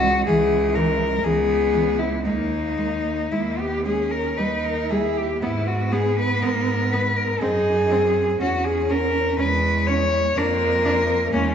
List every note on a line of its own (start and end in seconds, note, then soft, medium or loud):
0.00 0.17 C#2 medium
0.00 0.29 G#3 medium
0.00 0.26 F#4 loud
0.26 1.13 C#2 medium
0.26 0.35 E3 medium
0.26 1.25 E3 medium
0.26 0.76 G#4 medium
0.75 0.84 E3 medium
0.75 1.26 A#4 medium
1.23 2.13 C#2 medium
1.23 1.32 E3 medium
1.23 2.27 B3 medium
1.23 2.00 G#4 medium
1.74 1.82 E3 soft
1.99 2.25 E4 medium
2.25 3.19 D#2 medium
2.25 2.33 G#3 soft
2.25 3.21 A#3 medium
2.25 3.33 D#4 medium
2.78 2.86 G#3 soft
3.31 4.26 D#2 medium
3.31 3.40 G#3 soft
3.31 3.59 A#3 medium
3.31 3.60 E4 medium
3.58 3.86 B3 medium
3.58 3.85 G4 medium
3.85 3.94 G#3 soft
3.85 4.39 C#4 medium
3.85 4.13 G#4 medium
4.11 4.39 A#4 medium
4.37 5.30 D#2 medium
4.37 4.47 G3 soft
4.37 4.91 D#4 medium
4.37 4.66 B4 medium
4.64 4.92 A#4 medium
4.89 4.99 G3 soft
4.89 5.40 E4 medium
4.89 5.18 G#4 medium
5.17 5.42 G4 medium
5.40 6.31 G#2 medium
5.40 7.43 B3 medium
5.40 5.50 B3 medium
5.40 5.69 E4 medium
5.67 5.93 F#4 medium
5.92 6.00 B3 soft
5.92 6.17 G#4 medium
6.19 6.44 B4 medium
6.42 7.31 G#2 medium
6.42 6.50 B3 soft
6.42 6.93 A#4 medium
6.92 7.01 B3 soft
6.92 7.18 B4 medium
7.16 7.41 A#4 medium
7.40 8.30 F#2 medium
7.40 7.50 C4 soft
7.40 7.93 D#4 medium
7.40 8.40 G#4 medium
7.91 7.99 C4 soft
7.91 8.40 C4 medium
8.40 9.28 E2 medium
8.40 9.41 C#4 medium
8.40 8.49 C#4 medium
8.40 8.66 F#4 medium
8.64 8.92 G#4 medium
8.90 8.98 C#4 soft
8.90 9.39 A#4 medium
9.39 10.26 E2 medium
9.39 10.35 G#3 medium
9.39 9.47 C#4 medium
9.39 9.89 B4 medium
9.87 9.96 C#4 soft
9.87 10.39 C#5 medium
10.36 11.22 F2 medium
10.36 11.34 A#3 medium
10.36 10.45 D4 medium
10.36 11.32 A#4 medium
10.85 10.93 D4 medium
11.32 11.55 E2 medium
11.32 11.55 G#3 medium
11.32 11.41 A#3 medium
11.32 11.55 C#4 medium